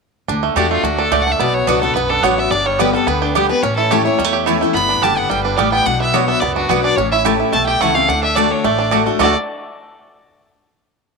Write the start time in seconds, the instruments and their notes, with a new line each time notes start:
0.28 upright bass D2, steel-string acoustic guitar D3, five-string banjo D4
0.43 five-string banjo A3
0.56 upright bass E2, steel-string acoustic guitar D3 A3 D4 F#4, mandolin A3 F#4 D5 A5, five-string banjo D4, fiddle G4
0.71 five-string banjo A3, fiddle F4
0.83 upright bass D2, steel-string acoustic guitar D3, five-string banjo D4, fiddle F#4
0.98 five-string banjo D4, fiddle A4
1.11 upright bass C#2, steel-string acoustic guitar A2, mandolin A3 F#4 D5 A5, five-string banjo A3, fiddle D5
1.22 fiddle F#5
1.27 five-string banjo D4
1.32 fiddle E5
1.39 upright bass B1, steel-string acoustic guitar B2, five-string banjo B3, fiddle D5
1.54 fiddle C#5
1.67 upright bass C#2, steel-string acoustic guitar F#3 B3 D4 F#4, mandolin B3 F#4 D5 F#5, five-string banjo D4, fiddle B4
1.81 five-string banjo B3, steel-string acoustic guitar D4 F#4, fiddle A4
1.94 upright bass B1, steel-string acoustic guitar F#2, five-string banjo B3, fiddle B4
2.09 five-string banjo D4, fiddle A4
2.22 upright bass A1, steel-string acoustic guitar F#3 B3 D4 F#4, mandolin B3 F#4 D5 F#5, five-string banjo B3, fiddle C#5
2.38 five-string banjo B3, fiddle E5
2.51 upright bass G1, steel-string acoustic guitar G2, five-string banjo D4, fiddle D5
2.66 five-string banjo G3, fiddle C#5
2.79 steel-string acoustic guitar D3 G3 B3 G4, mandolin B3 G4 D5 G5, five-string banjo B3, fiddle B4
2.94 five-string banjo G3, steel-string acoustic guitar B3 G4, fiddle A4
3.07 upright bass D2, steel-string acoustic guitar D3, five-string banjo B3, fiddle B4
3.22 fiddle D4, five-string banjo G4
3.35 steel-string acoustic guitar D3 G3 B3 G4, mandolin B3 G4 D5 G5, five-string banjo B3, fiddle G4
3.49 steel-string acoustic guitar B3 G4, five-string banjo D4, fiddle B4
3.63 upright bass A1, steel-string acoustic guitar A2, five-string banjo C#4, fiddle C#5
3.76 five-string banjo E4, fiddle A4
3.91 steel-string acoustic guitar E3 A3 C#4 E4, mandolin A3 E4 C#5 A5, fiddle G4, five-string banjo G4
4.04 steel-string acoustic guitar C#4 E4, five-string banjo E4, fiddle C#5
4.19 upright bass E2, steel-string acoustic guitar E2, five-string banjo G3
4.24 five-string banjo A3
4.33 five-string banjo G4
4.46 steel-string acoustic guitar E3 A3 C#4 E4, mandolin A3 E4 C#5 A5, five-string banjo E4
4.61 five-string banjo A3, steel-string acoustic guitar C#4 E4
4.74 upright bass G1, steel-string acoustic guitar G2, five-string banjo B3, fiddle B5
4.89 five-string banjo D4
5.01 upright bass F#1, steel-string acoustic guitar D3 G3 B3 G4, five-string banjo G3, mandolin B3 G4 D5 G5, fiddle A5
5.17 five-string banjo B3, fiddle F#5
5.30 upright bass G1, steel-string acoustic guitar G2, five-string banjo G3, fiddle G5
5.44 five-string banjo D4, fiddle B4
5.57 upright bass A1, steel-string acoustic guitar A2, five-string banjo G3, mandolin B3 G4 D5 G5, fiddle D5
5.72 five-string banjo B3, fiddle G5
5.86 upright bass B1, steel-string acoustic guitar B2, five-string banjo D4, fiddle F#5
6.00 five-string banjo B3, fiddle E5
6.13 steel-string acoustic guitar F#3 B3 D4 F#4, mandolin B3 F#4 D5 F#5, five-string banjo B3, fiddle C#5
6.28 five-string banjo B3, fiddle E5
6.40 upright bass C#2, steel-string acoustic guitar F#2, five-string banjo B3, fiddle D5
6.55 five-string banjo D4, fiddle F#4
6.69 upright bass B1, steel-string acoustic guitar F#3 B3 D4 F#4, mandolin B3 F#4 D5 F#5, five-string banjo B3, fiddle B4
6.83 five-string banjo D4, fiddle D5
6.96 upright bass A1, steel-string acoustic guitar A2, five-string banjo C#4, fiddle C#5
7.12 five-string banjo E4, fiddle E5
7.24 steel-string acoustic guitar E3 A3 C#4 E4, mandolin A3 E4 C#5 A5, five-string banjo G4
7.40 five-string banjo E4
7.52 upright bass B1, steel-string acoustic guitar E2, five-string banjo A3, fiddle A5
7.66 five-string banjo G4, fiddle G5
7.80 upright bass C#2, steel-string acoustic guitar E3 A3 C#4 E4, mandolin A3 E4 C#5 A5, five-string banjo E4, fiddle F#5
7.95 five-string banjo A3, steel-string acoustic guitar C#4 E4, fiddle F5
8.08 upright bass D2, steel-string acoustic guitar D3, five-string banjo D4, fiddle F#5
8.23 five-string banjo D4, fiddle E5
8.36 steel-string acoustic guitar D3 A3 D4 F#4, mandolin A3 F#4 D5 A5, five-string banjo D4, fiddle D5
8.51 five-string banjo D4, fiddle C#5
8.64 upright bass A1, steel-string acoustic guitar A2, five-string banjo A3, fiddle D5
8.79 five-string banjo D4
8.91 steel-string acoustic guitar D3 A3 D4 F#4, mandolin A3 F#4 D5 A5, five-string banjo D4
9.06 five-string banjo A3, steel-string acoustic guitar D4 F#4
9.19 upright bass D2, steel-string acoustic guitar D3 A3 D4 F#4, mandolin A3 F#4 D5 A5, five-string banjo A3 D4, fiddle D5
9.23 five-string banjo F#4 A4